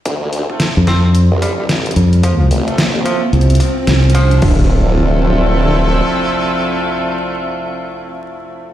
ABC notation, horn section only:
X:1
M:4/4
L:1/16
Q:"Swing 16ths" 1/4=110
K:Dm
V:1 name="Horn section"
z3 [A,CEFA]2 z [A,CEFA] z8 z | z3 [A,CEFA]2 z [A,CEFA] z8 z | [A,CEFA]16- | [A,CEFA]16 |]